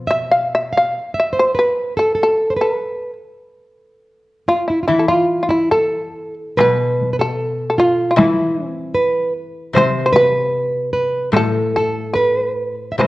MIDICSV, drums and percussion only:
0, 0, Header, 1, 2, 480
1, 0, Start_track
1, 0, Tempo, 833333
1, 65, Time_signature, 2, 2, 24, 8
1, 1024, Tempo, 777202
1, 2944, Tempo, 854701
1, 3904, Tempo, 814111
1, 4384, Tempo, 783290
1, 6304, Tempo, 818554
1, 7786, End_track
2, 0, Start_track
2, 0, Title_t, "Taiko and cinematic ensemble drums"
2, 3898, Note_on_c, 9, 37, 51
2, 3898, Note_on_c, 9, 48, 51
2, 3957, Note_off_c, 9, 37, 0
2, 3957, Note_off_c, 9, 48, 0
2, 4148, Note_on_c, 9, 48, 39
2, 4207, Note_off_c, 9, 48, 0
2, 4860, Note_on_c, 9, 37, 58
2, 4860, Note_on_c, 9, 48, 62
2, 4921, Note_off_c, 9, 37, 0
2, 4921, Note_off_c, 9, 48, 0
2, 5827, Note_on_c, 9, 37, 53
2, 5827, Note_on_c, 9, 48, 53
2, 5888, Note_off_c, 9, 37, 0
2, 5888, Note_off_c, 9, 48, 0
2, 6057, Note_on_c, 9, 48, 39
2, 6118, Note_off_c, 9, 48, 0
2, 6766, Note_on_c, 9, 37, 52
2, 6766, Note_on_c, 9, 48, 48
2, 6825, Note_off_c, 9, 37, 0
2, 6825, Note_off_c, 9, 48, 0
2, 7745, Note_on_c, 9, 37, 54
2, 7745, Note_on_c, 9, 48, 52
2, 7786, Note_off_c, 9, 37, 0
2, 7786, Note_off_c, 9, 48, 0
2, 7786, End_track
0, 0, End_of_file